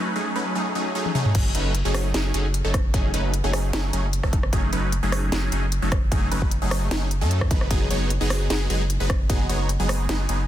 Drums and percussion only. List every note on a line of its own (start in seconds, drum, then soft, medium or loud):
1.06 high tom medium
1.15 mid tom medium
1.25 mid tom medium
1.35 kick loud
1.35 closed hi-hat medium
1.35 crash loud
1.55 closed hi-hat medium
1.75 closed hi-hat medium
1.94 cross-stick medium
1.94 open hi-hat medium
2.14 snare loud
2.14 closed hi-hat medium
2.34 closed hi-hat medium
2.54 closed hi-hat medium
2.74 kick loud
2.74 cross-stick medium
2.74 closed hi-hat medium
2.94 kick loud
2.94 closed hi-hat medium
3.14 closed hi-hat medium
3.34 closed hi-hat medium
3.53 cross-stick medium
3.53 open hi-hat medium
3.73 snare loud
3.73 closed hi-hat medium
3.93 closed hi-hat medium
4.13 closed hi-hat medium
4.23 kick medium
4.23 cross-stick medium
4.33 kick loud
4.33 closed hi-hat medium
4.43 cross-stick medium
4.53 kick loud
4.53 closed hi-hat medium
4.73 closed hi-hat medium
4.92 closed hi-hat medium
5.12 cross-stick medium
5.12 open hi-hat medium
5.32 snare loud
5.32 closed hi-hat medium
5.52 closed hi-hat medium
5.72 closed hi-hat medium
5.92 kick loud
5.92 cross-stick medium
5.92 closed hi-hat medium
6.12 kick loud
6.12 closed hi-hat medium
6.32 closed hi-hat medium
6.42 kick medium
6.51 closed hi-hat medium
6.71 cross-stick medium
6.71 open hi-hat medium
6.91 snare loud
6.91 closed hi-hat medium
7.11 closed hi-hat medium
7.31 closed hi-hat medium
7.41 kick medium
7.41 cross-stick medium
7.51 kick loud
7.51 closed hi-hat medium
7.61 cross-stick medium
7.71 kick loud
7.71 closed hi-hat medium
7.71 ride soft
7.91 closed hi-hat medium
8.10 closed hi-hat medium
8.30 cross-stick medium
8.30 open hi-hat medium
8.50 snare loud
8.50 closed hi-hat medium
8.50 ride soft
8.70 closed hi-hat medium
8.90 closed hi-hat medium
9.10 kick loud
9.10 cross-stick medium
9.10 closed hi-hat medium
9.30 kick loud
9.30 closed hi-hat medium
9.30 ride soft
9.49 closed hi-hat medium
9.69 closed hi-hat medium
9.89 cross-stick medium
9.89 open hi-hat loud
10.09 snare loud
10.09 closed hi-hat medium
10.09 ride soft
10.29 closed hi-hat medium